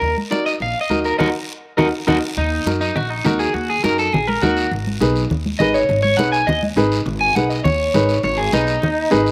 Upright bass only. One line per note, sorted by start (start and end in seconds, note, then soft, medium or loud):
0.02 0.14 D#2 medium
0.60 0.72 A#1 medium
0.90 1.13 D#2 medium
1.19 1.30 D#2 medium
1.79 1.89 D#2 medium
2.08 2.19 D#2 medium
2.37 2.61 D#2 medium
2.66 2.90 F#2 medium
2.96 3.19 A#1 medium
3.25 3.48 D#2 loud
3.54 3.78 D#2 loud
3.84 4.07 F#2 medium
4.13 4.37 A#1 medium
4.42 4.66 D#2 medium
4.71 4.95 G#1 loud
5.01 5.24 B1 medium
5.30 5.54 D#2 medium
5.60 5.83 G#1 medium
5.89 6.12 G#1 loud
6.18 6.41 B1 medium
6.47 6.71 D#2 medium
6.76 7.00 G#1 loud
7.06 7.29 G#1 loud
7.35 7.59 B1 medium
7.64 7.88 D#2 medium
7.94 8.18 G#1 loud
8.24 8.47 G#1 loud
8.52 8.76 B1 medium
8.82 9.06 D#2 medium
9.12 9.32 G#1 loud